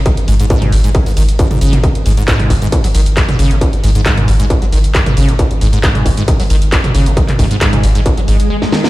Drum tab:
HH |xxoxxxoxxooxxxox|xxoxxxoxxooxxxox|xxoxxxoxxxoxxxox|xxoxxxoxxooxxxox|
CP |----------------|----x-------x---|----x-------x---|----x-------x---|
SD |----------------|----------------|----------------|----------------|
T2 |-----o-------o-o|-----o-------o--|-----o-------o--|-----o-------o--|
BD |o---o---o---o---|o---o-o-o---o---|o---o---o---o---|o---o-o-o---o---|

HH |xxoxxxoxxxox----|
CP |-x--x-----------|
SD |-------------ooo|
T2 |-o---o----------|
BD |o-o-o---o-------|